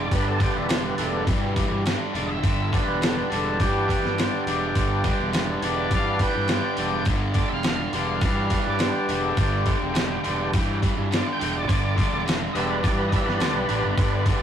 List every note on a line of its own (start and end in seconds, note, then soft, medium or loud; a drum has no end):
0.00 0.12 D5 loud
0.11 0.45 G1 loud
0.11 0.38 G2 medium
0.11 0.38 D3 medium
0.11 0.95 G3 medium
0.11 0.85 B3 medium
0.11 0.68 D4 medium
0.11 0.27 B4 medium
0.11 kick loud
0.11 open hi-hat medium
0.28 0.41 A4 medium
0.40 0.66 G2 medium
0.40 0.66 D3 medium
0.40 0.55 G4 medium
0.40 kick medium
0.40 open hi-hat medium
0.55 0.89 E1 medium
0.55 0.69 E4 medium
0.69 0.96 G2 medium
0.69 0.96 D3 medium
0.69 0.83 D4 medium
0.69 snare loud
0.69 open hi-hat medium
0.86 0.96 B3 loud
0.97 1.29 E1 medium
0.97 1.25 G2 medium
0.97 1.25 D3 medium
0.97 1.24 G3 soft
0.97 1.27 A3 medium
0.97 1.24 B3 soft
0.97 1.24 D4 medium
0.97 open hi-hat medium
1.27 1.53 G2 medium
1.27 1.61 G2 medium
1.27 1.83 B2 medium
1.27 1.54 E3 medium
1.27 1.85 G3 medium
1.27 kick loud
1.27 open hi-hat medium
1.56 1.83 G2 medium
1.56 1.83 E3 medium
1.56 kick medium
1.56 open hi-hat medium
1.71 1.93 G2 medium
1.86 2.12 G2 medium
1.86 2.12 D3 medium
1.86 snare loud
1.86 open hi-hat medium
2.13 2.37 E1 medium
2.13 2.40 G2 medium
2.13 2.41 D3 medium
2.13 2.29 D5 medium
2.13 open hi-hat soft
2.27 2.30 D#5 medium
2.31 2.87 E5 loud
2.43 2.77 G1 medium
2.43 2.69 G2 medium
2.43 2.70 D3 medium
2.43 kick loud
2.43 open hi-hat medium
2.72 2.99 G2 medium
2.72 2.99 D3 medium
2.72 4.75 G3 medium
2.72 4.76 B3 medium
2.72 4.77 D4 medium
2.72 kick medium
2.72 open hi-hat medium
2.87 3.21 E1 medium
2.87 3.01 B4 medium
3.01 3.28 G2 medium
3.01 3.28 D3 loud
3.01 3.16 A4 medium
3.01 snare loud
3.01 open hi-hat medium
3.17 3.30 B4 medium
3.30 3.61 E1 medium
3.30 3.56 G2 medium
3.30 3.57 D3 medium
3.30 3.60 A4 medium
3.30 open hi-hat medium
3.60 3.86 G2 medium
3.60 3.94 G2 medium
3.60 3.86 E3 medium
3.60 5.30 G4 loud
3.60 kick loud
3.60 open hi-hat medium
3.88 4.14 G2 medium
3.88 4.14 E3 medium
3.88 kick medium
3.88 open hi-hat medium
4.04 4.26 G2 medium
4.04 snare soft
4.18 4.44 G2 medium
4.18 4.44 D3 medium
4.18 snare loud
4.18 open hi-hat medium
4.47 4.69 E1 medium
4.47 4.73 G2 medium
4.47 4.73 D3 medium
4.47 open hi-hat medium
4.75 5.10 G1 loud
4.75 5.02 G2 medium
4.75 5.02 D3 medium
4.75 7.04 G3 medium
4.75 7.04 B3 soft
4.75 7.05 D4 medium
4.75 kick loud
4.75 open hi-hat medium
5.04 5.31 G2 medium
5.04 5.31 D3 medium
5.04 kick medium
5.04 open hi-hat medium
5.20 5.53 E1 medium
5.33 5.59 G2 medium
5.33 5.60 D3 medium
5.33 snare loud
5.33 open hi-hat medium
5.61 5.93 E1 medium
5.61 5.89 G2 medium
5.61 5.89 D3 medium
5.61 5.64 C#5 medium
5.61 open hi-hat medium
5.65 5.91 B4 medium
5.65 5.92 D5 medium
5.91 6.25 G2 medium
5.91 6.18 G2 medium
5.91 6.18 E3 medium
5.91 6.20 D5 medium
5.91 kick loud
5.91 open hi-hat medium
5.95 6.22 F5 medium
6.19 6.47 G2 medium
6.19 6.47 E3 medium
6.19 6.49 B4 medium
6.19 kick medium
6.19 open hi-hat medium
6.24 6.50 G5 medium
6.35 6.58 G2 medium
6.48 6.75 G2 medium
6.48 6.76 D3 medium
6.48 6.51 F#5 medium
6.48 snare loud
6.48 open hi-hat medium
6.53 7.07 G5 loud
6.77 7.00 E1 medium
6.77 7.04 G2 medium
6.77 7.04 D3 medium
6.77 open hi-hat medium
7.05 7.40 G1 medium
7.05 7.33 G2 medium
7.05 7.34 D3 medium
7.05 kick loud
7.05 open hi-hat medium
7.34 7.62 G2 medium
7.34 7.62 D3 medium
7.34 7.49 D5 loud
7.34 kick loud
7.34 open hi-hat medium
7.48 7.84 E1 medium
7.48 7.51 E5 medium
7.53 8.64 F5 medium
7.63 7.91 G2 medium
7.63 7.91 D3 medium
7.63 snare loud
7.63 open hi-hat medium
7.93 8.23 E1 medium
7.93 8.20 G2 medium
7.93 8.20 D3 medium
7.93 9.39 G3 medium
7.93 9.39 B3 soft
7.93 9.41 D4 medium
7.93 open hi-hat medium
8.21 8.56 G2 loud
8.21 8.48 G2 medium
8.21 8.48 E3 loud
8.21 kick loud
8.21 open hi-hat medium
8.50 8.77 G2 medium
8.50 8.77 E3 medium
8.50 kick medium
8.50 open hi-hat medium
8.66 8.89 G2 medium
8.66 8.81 D5 medium
8.79 9.06 G2 medium
8.79 9.06 D3 medium
8.79 snare loud
8.79 open hi-hat medium
8.83 9.10 G4 loud
9.08 9.31 E1 medium
9.08 9.35 G2 medium
9.08 9.35 D3 medium
9.08 9.13 F#4 medium
9.08 open hi-hat medium
9.15 10.81 G4 loud
9.37 9.71 G1 medium
9.37 9.63 G2 medium
9.37 9.64 D3 medium
9.37 9.78 G3 medium
9.37 9.77 B3 soft
9.37 kick loud
9.37 open hi-hat medium
9.42 9.78 D4 medium
9.66 9.93 G2 medium
9.66 9.93 D3 medium
9.66 kick medium
9.66 open hi-hat medium
9.82 10.15 E1 loud
9.94 10.21 G2 medium
9.94 10.21 D3 loud
9.94 snare loud
9.94 open hi-hat medium
10.23 10.55 E1 medium
10.23 10.50 G2 medium
10.23 10.50 D3 medium
10.23 10.52 G3 soft
10.23 open hi-hat medium
10.28 10.52 B3 soft
10.28 10.53 D4 medium
10.53 10.87 G2 medium
10.53 10.79 G2 medium
10.53 10.80 E3 medium
10.53 kick loud
10.53 open hi-hat medium
10.82 11.08 G2 medium
10.82 11.08 E3 medium
10.82 kick medium
10.82 open hi-hat medium
10.97 11.19 G2 medium
11.11 11.37 G2 medium
11.11 11.37 D3 loud
11.11 snare medium
11.11 open hi-hat medium
11.15 11.27 D5 medium
11.27 11.29 F#5 medium
11.33 11.57 G5 loud
11.39 11.63 E1 medium
11.39 11.65 G2 medium
11.39 11.66 D3 medium
11.39 open hi-hat medium
11.57 11.69 D5 medium
11.68 12.02 G1 medium
11.68 11.94 G2 medium
11.68 11.94 D3 medium
11.68 11.71 C#5 medium
11.68 12.26 D5 loud
11.68 kick loud
11.68 open hi-hat medium
11.96 12.22 G2 medium
11.96 12.23 D3 medium
11.96 kick loud
11.96 open hi-hat medium
12.12 12.45 E1 loud
12.25 12.51 G2 medium
12.25 12.52 D3 medium
12.25 snare loud
12.25 open hi-hat medium
12.53 12.85 E1 medium
12.53 12.80 G2 medium
12.53 12.81 D3 medium
12.53 13.66 G3 medium
12.53 13.67 B3 soft
12.53 13.68 D4 medium
12.53 12.56 D#5 medium
12.53 open hi-hat medium
12.57 12.69 E5 loud
12.70 12.83 B4 medium
12.83 13.09 G2 medium
12.83 13.17 G2 loud
12.83 13.09 E3 medium
12.83 12.97 D5 medium
12.83 kick loud
12.83 open hi-hat medium
12.98 13.11 B4 medium
13.08 13.38 G2 medium
13.08 13.12 D#5 medium
13.12 13.38 E3 medium
13.12 13.27 E5 medium
13.12 kick medium
13.12 open hi-hat medium
13.26 13.37 G2 medium
13.26 13.39 B4 medium
13.26 snare soft
13.40 13.53 D2 medium
13.40 13.66 G2 medium
13.40 13.66 D3 medium
13.40 13.55 D5 medium
13.40 snare loud
13.40 open hi-hat medium
13.54 13.67 B1 medium
13.54 13.69 B4 loud
13.68 13.82 A1 medium
13.68 13.95 G2 medium
13.68 13.95 D3 medium
13.68 13.94 G3 soft
13.68 13.94 B3 soft
13.68 13.95 D4 soft
13.68 14.25 B4 loud
13.68 open hi-hat soft
13.82 13.96 G1 medium
13.97 14.31 G1 loud
13.97 14.24 G2 medium
13.97 14.24 D3 loud
13.97 14.42 G3 medium
13.97 14.42 B3 medium
13.97 14.42 D4 medium
13.97 kick loud
13.97 open hi-hat medium
14.26 14.42 G2 medium
14.26 14.42 D3 medium
14.26 kick loud
14.26 open hi-hat medium